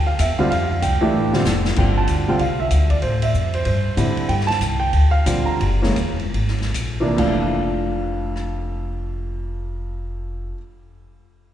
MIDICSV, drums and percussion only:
0, 0, Header, 1, 2, 480
1, 0, Start_track
1, 0, Key_signature, -1, "major"
1, 0, Tempo, 315457
1, 771, Time_signature, 4, 2, 24, 8
1, 7013, Tempo, 339175
1, 8933, Tempo, 390879
1, 9893, Tempo, 432900
1, 10373, Tempo, 451467
1, 15007, End_track
2, 0, Start_track
2, 0, Title_t, "Drums"
2, 286, Note_on_c, 9, 44, 62
2, 286, Note_on_c, 9, 51, 64
2, 297, Note_on_c, 9, 36, 19
2, 438, Note_off_c, 9, 44, 0
2, 438, Note_off_c, 9, 51, 0
2, 449, Note_off_c, 9, 36, 0
2, 781, Note_on_c, 9, 36, 18
2, 785, Note_on_c, 9, 51, 55
2, 934, Note_off_c, 9, 36, 0
2, 937, Note_off_c, 9, 51, 0
2, 1252, Note_on_c, 9, 44, 56
2, 1252, Note_on_c, 9, 51, 58
2, 1257, Note_on_c, 9, 36, 19
2, 1404, Note_off_c, 9, 44, 0
2, 1404, Note_off_c, 9, 51, 0
2, 1410, Note_off_c, 9, 36, 0
2, 2028, Note_on_c, 9, 38, 49
2, 2180, Note_off_c, 9, 38, 0
2, 2205, Note_on_c, 9, 44, 63
2, 2211, Note_on_c, 9, 38, 77
2, 2357, Note_off_c, 9, 44, 0
2, 2363, Note_off_c, 9, 38, 0
2, 2510, Note_on_c, 9, 38, 67
2, 2662, Note_off_c, 9, 38, 0
2, 2683, Note_on_c, 9, 49, 62
2, 2688, Note_on_c, 9, 36, 61
2, 2835, Note_off_c, 9, 49, 0
2, 2841, Note_off_c, 9, 36, 0
2, 3157, Note_on_c, 9, 44, 46
2, 3157, Note_on_c, 9, 51, 55
2, 3168, Note_on_c, 9, 36, 18
2, 3309, Note_off_c, 9, 44, 0
2, 3309, Note_off_c, 9, 51, 0
2, 3320, Note_off_c, 9, 36, 0
2, 3640, Note_on_c, 9, 51, 48
2, 3644, Note_on_c, 9, 36, 22
2, 3792, Note_off_c, 9, 51, 0
2, 3797, Note_off_c, 9, 36, 0
2, 4116, Note_on_c, 9, 44, 51
2, 4116, Note_on_c, 9, 51, 57
2, 4125, Note_on_c, 9, 36, 23
2, 4268, Note_off_c, 9, 44, 0
2, 4268, Note_off_c, 9, 51, 0
2, 4277, Note_off_c, 9, 36, 0
2, 4410, Note_on_c, 9, 51, 42
2, 4419, Note_on_c, 9, 36, 46
2, 4563, Note_off_c, 9, 51, 0
2, 4572, Note_off_c, 9, 36, 0
2, 4593, Note_on_c, 9, 51, 48
2, 4605, Note_on_c, 9, 36, 17
2, 4745, Note_off_c, 9, 51, 0
2, 4757, Note_off_c, 9, 36, 0
2, 4899, Note_on_c, 9, 51, 59
2, 5051, Note_off_c, 9, 51, 0
2, 5080, Note_on_c, 9, 44, 43
2, 5086, Note_on_c, 9, 36, 22
2, 5233, Note_off_c, 9, 44, 0
2, 5238, Note_off_c, 9, 36, 0
2, 5379, Note_on_c, 9, 51, 42
2, 5531, Note_off_c, 9, 51, 0
2, 5554, Note_on_c, 9, 51, 55
2, 5566, Note_on_c, 9, 36, 23
2, 5707, Note_off_c, 9, 51, 0
2, 5718, Note_off_c, 9, 36, 0
2, 6044, Note_on_c, 9, 44, 52
2, 6044, Note_on_c, 9, 51, 64
2, 6047, Note_on_c, 9, 36, 22
2, 6196, Note_off_c, 9, 44, 0
2, 6196, Note_off_c, 9, 51, 0
2, 6199, Note_off_c, 9, 36, 0
2, 6346, Note_on_c, 9, 51, 41
2, 6498, Note_off_c, 9, 51, 0
2, 6527, Note_on_c, 9, 51, 50
2, 6530, Note_on_c, 9, 36, 22
2, 6679, Note_off_c, 9, 51, 0
2, 6682, Note_off_c, 9, 36, 0
2, 6696, Note_on_c, 9, 38, 25
2, 6820, Note_on_c, 9, 51, 40
2, 6849, Note_off_c, 9, 38, 0
2, 6850, Note_on_c, 9, 38, 40
2, 6972, Note_off_c, 9, 51, 0
2, 7002, Note_off_c, 9, 38, 0
2, 7012, Note_on_c, 9, 36, 23
2, 7012, Note_on_c, 9, 44, 55
2, 7012, Note_on_c, 9, 51, 55
2, 7153, Note_off_c, 9, 36, 0
2, 7153, Note_off_c, 9, 44, 0
2, 7153, Note_off_c, 9, 51, 0
2, 7465, Note_on_c, 9, 51, 49
2, 7467, Note_on_c, 9, 36, 23
2, 7606, Note_off_c, 9, 51, 0
2, 7609, Note_off_c, 9, 36, 0
2, 7936, Note_on_c, 9, 44, 60
2, 7936, Note_on_c, 9, 51, 63
2, 7937, Note_on_c, 9, 36, 21
2, 8077, Note_off_c, 9, 44, 0
2, 8077, Note_off_c, 9, 51, 0
2, 8078, Note_off_c, 9, 36, 0
2, 8424, Note_on_c, 9, 36, 20
2, 8424, Note_on_c, 9, 51, 51
2, 8565, Note_off_c, 9, 51, 0
2, 8566, Note_off_c, 9, 36, 0
2, 8746, Note_on_c, 9, 38, 46
2, 8887, Note_off_c, 9, 38, 0
2, 8926, Note_on_c, 9, 44, 43
2, 8926, Note_on_c, 9, 51, 50
2, 8931, Note_on_c, 9, 36, 19
2, 9050, Note_off_c, 9, 44, 0
2, 9050, Note_off_c, 9, 51, 0
2, 9054, Note_off_c, 9, 36, 0
2, 9214, Note_on_c, 9, 51, 36
2, 9336, Note_off_c, 9, 51, 0
2, 9394, Note_on_c, 9, 51, 50
2, 9396, Note_on_c, 9, 36, 17
2, 9517, Note_off_c, 9, 51, 0
2, 9519, Note_off_c, 9, 36, 0
2, 9560, Note_on_c, 9, 38, 23
2, 9683, Note_off_c, 9, 38, 0
2, 9690, Note_on_c, 9, 51, 38
2, 9727, Note_on_c, 9, 38, 35
2, 9813, Note_off_c, 9, 51, 0
2, 9850, Note_off_c, 9, 38, 0
2, 9887, Note_on_c, 9, 44, 62
2, 9887, Note_on_c, 9, 51, 61
2, 9891, Note_on_c, 9, 36, 18
2, 9998, Note_off_c, 9, 44, 0
2, 9998, Note_off_c, 9, 51, 0
2, 10002, Note_off_c, 9, 36, 0
2, 10373, Note_on_c, 9, 36, 46
2, 10373, Note_on_c, 9, 49, 52
2, 10479, Note_off_c, 9, 36, 0
2, 10480, Note_off_c, 9, 49, 0
2, 11625, Note_on_c, 9, 37, 45
2, 11731, Note_off_c, 9, 37, 0
2, 15007, End_track
0, 0, End_of_file